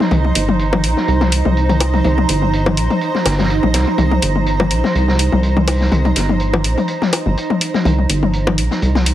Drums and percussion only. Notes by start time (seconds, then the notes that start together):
0.00 snare, high tom
0.11 closed hi-hat, mid tom
0.24 high tom
0.35 closed hi-hat, open hi-hat
0.49 high tom
0.59 closed hi-hat
0.73 mid tom, high tom, high bongo
0.84 closed hi-hat, open hi-hat
0.97 snare, high tom
1.08 closed hi-hat
1.20 snare, high tom
1.32 closed hi-hat, open hi-hat
1.45 high tom
1.57 closed hi-hat
1.70 closed hi-hat, mid tom, high tom
1.80 open hi-hat, high bongo
1.94 closed hi-hat, high tom
2.04 closed hi-hat, mid tom
2.18 high tom
2.28 closed hi-hat, open hi-hat
2.42 high tom
2.53 closed hi-hat
2.66 mid tom, high tom, high bongo
2.77 closed hi-hat, open hi-hat
2.90 closed hi-hat, high tom
3.01 closed hi-hat
3.15 snare, high tom
3.25 snare, closed hi-hat, open hi-hat, high bongo
3.31 snare, closed hi-hat
3.38 snare, closed hi-hat, high tom
3.44 snare, closed hi-hat
3.50 closed hi-hat
3.63 high tom
3.74 snare, closed hi-hat, open hi-hat
3.87 high tom
3.98 closed hi-hat, mid tom
4.11 high tom
4.22 closed hi-hat, open hi-hat
4.36 high tom
4.46 closed hi-hat
4.60 mid tom, high tom, high bongo
4.71 closed hi-hat, open hi-hat
4.84 snare, high tom
4.95 closed hi-hat
5.08 snare, high tom
5.19 closed hi-hat, open hi-hat
5.32 high tom
5.43 closed hi-hat
5.57 mid tom, high tom
5.67 open hi-hat, high bongo
5.81 snare, high tom
5.92 closed hi-hat, mid tom
6.05 closed hi-hat, high tom
6.15 snare, closed hi-hat, open hi-hat
6.29 high tom
6.40 closed hi-hat
6.53 mid tom, high tom, high bongo
6.64 closed hi-hat, open hi-hat
6.78 closed hi-hat, high tom
6.88 closed hi-hat
7.02 snare, high tom
7.13 closed hi-hat, open hi-hat, high bongo
7.26 high tom
7.37 closed hi-hat
7.50 high tom
7.61 closed hi-hat, open hi-hat
7.74 snare, high tom
7.85 closed hi-hat, mid tom
7.99 high tom
8.09 closed hi-hat, open hi-hat
8.23 high tom
8.33 closed hi-hat
8.47 mid tom, high tom, high bongo
8.58 closed hi-hat, open hi-hat
8.71 snare, high tom
8.82 closed hi-hat
8.95 snare, high tom
9.06 closed hi-hat, open hi-hat